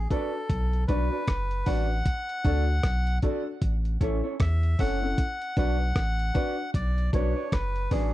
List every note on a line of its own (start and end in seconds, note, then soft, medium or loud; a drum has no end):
0.10 0.33 D4 medium
0.10 0.30 D4 medium
0.10 0.34 F#4 medium
0.10 0.30 F#4 medium
0.10 0.84 A4 medium
0.10 0.34 B4 loud
0.10 0.30 B4 medium
0.10 0.30 D5 medium
0.10 kick medium
0.10 closed hi-hat medium
0.50 0.85 B1 loud
0.50 kick loud
0.50 closed hi-hat medium
0.73 closed hi-hat soft
0.88 1.10 B1 medium
0.88 1.07 D4 medium
0.88 1.12 D4 medium
0.88 1.08 F#4 medium
0.88 1.12 F#4 medium
0.88 1.68 B4 medium
0.88 1.08 B4 medium
0.88 1.12 B4 medium
0.88 1.08 D5 medium
0.88 kick medium
0.88 closed hi-hat medium
1.12 1.22 D4 soft
1.12 1.22 F#4 medium
1.12 1.22 B4 medium
1.12 1.22 D5 medium
1.27 1.63 F#1 loud
1.27 kick medium
1.27 cross-stick loud
1.27 closed hi-hat medium
1.51 closed hi-hat medium
1.66 2.02 A1 loud
1.66 1.85 D4 medium
1.66 1.89 D4 medium
1.66 1.86 F#4 medium
1.66 1.90 F#4 medium
1.66 1.86 B4 medium
1.66 1.90 B4 medium
1.66 1.86 D5 medium
1.66 3.18 F#5 loud
1.66 kick medium
1.66 open hi-hat medium
2.06 kick loud
2.06 closed hi-hat loud
2.29 closed hi-hat medium
2.44 2.80 D2 medium
2.44 2.63 D4 medium
2.44 2.67 D4 medium
2.44 2.64 F#4 medium
2.44 2.68 F#4 medium
2.44 2.64 A4 medium
2.44 2.68 A4 medium
2.44 2.64 D5 medium
2.44 kick medium
2.44 closed hi-hat medium
2.83 3.19 B1 loud
2.83 kick loud
2.83 cross-stick loud
2.83 closed hi-hat medium
3.07 closed hi-hat medium
3.22 3.46 D4 medium
3.22 3.42 D4 medium
3.22 3.46 F#4 medium
3.22 3.42 F#4 medium
3.22 3.42 A4 medium
3.22 3.46 A4 loud
3.22 3.42 D5 medium
3.22 kick medium
3.22 closed hi-hat medium
3.62 3.97 A1 loud
3.62 kick loud
3.62 closed hi-hat medium
3.85 closed hi-hat soft
4.01 4.22 A1 medium
4.01 4.20 C#4 medium
4.01 4.24 C#4 medium
4.01 4.24 E4 medium
4.01 4.20 E4 medium
4.01 4.20 A4 medium
4.01 4.24 A4 loud
4.01 4.20 C#5 medium
4.01 kick medium
4.01 closed hi-hat medium
4.24 4.34 C#4 medium
4.24 4.34 E4 medium
4.24 4.34 A4 medium
4.24 4.34 C#5 medium
4.40 4.75 E2 medium
4.40 4.81 E5 loud
4.40 kick medium
4.40 cross-stick loud
4.40 closed hi-hat medium
4.63 closed hi-hat soft
4.79 5.14 F#1 medium
4.79 4.98 C#4 medium
4.79 5.01 C#4 medium
4.79 4.98 E4 medium
4.79 5.01 E4 medium
4.79 4.98 A4 medium
4.79 5.02 A4 medium
4.79 4.98 C#5 medium
4.79 5.57 F#5 loud
4.79 kick medium
4.79 open hi-hat medium
5.02 5.18 C#4 medium
5.02 5.18 E4 medium
5.02 5.18 A4 medium
5.18 kick loud
5.18 closed hi-hat medium
5.42 closed hi-hat medium
5.57 5.92 B1 medium
5.57 5.80 D4 medium
5.57 5.76 D4 medium
5.57 5.80 F#4 medium
5.57 5.76 F#4 medium
5.57 5.80 B4 loud
5.57 5.76 B4 medium
5.57 5.77 D5 medium
5.57 6.71 F#5 loud
5.57 kick medium
5.57 closed hi-hat medium
5.96 6.31 A1 medium
5.96 kick loud
5.96 cross-stick loud
5.96 closed hi-hat medium
6.19 closed hi-hat soft
6.34 6.54 D4 medium
6.34 6.58 D4 loud
6.34 6.54 F#4 medium
6.34 6.58 F#4 medium
6.34 6.54 B4 medium
6.34 6.58 B4 loud
6.34 6.54 D5 medium
6.34 kick medium
6.34 closed hi-hat medium
6.74 7.10 B1 loud
6.74 7.11 D5 medium
6.74 kick loud
6.74 closed hi-hat medium
6.98 closed hi-hat medium
7.13 7.34 B1 medium
7.13 7.36 D4 medium
7.13 7.32 D4 medium
7.13 7.36 F#4 medium
7.13 7.32 F#4 medium
7.13 7.36 B4 medium
7.13 7.33 B4 medium
7.13 7.54 C#5 medium
7.13 7.33 D5 medium
7.13 kick medium
7.13 closed hi-hat medium
7.36 7.47 D4 medium
7.36 7.47 F#4 medium
7.36 7.47 B4 medium
7.36 7.46 D5 medium
7.52 7.88 F#1 loud
7.52 7.92 B4 medium
7.52 kick medium
7.52 cross-stick loud
7.52 closed hi-hat medium
7.76 closed hi-hat soft
7.91 8.14 A1 medium
7.91 8.13 D4 medium
7.91 8.10 D4 medium
7.91 8.14 F#4 medium
7.91 8.10 F#4 medium
7.91 8.13 G#4 medium
7.91 8.10 B4 medium
7.91 8.14 B4 medium
7.91 8.11 D5 medium
7.91 kick medium
7.91 open hi-hat medium